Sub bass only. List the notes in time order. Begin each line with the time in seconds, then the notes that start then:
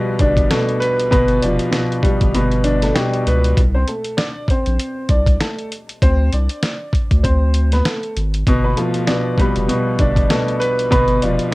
0.20 G1
1.12 G1
1.43 F1
2.21 G1
3.27 C#2
3.57 C2
4.67 A#1
5.09 C2
6.02 D2
6.33 C2
7.11 D2
8.17 G#1
8.47 G1
9.56 F1
9.99 G1
10.92 G1
11.23 F1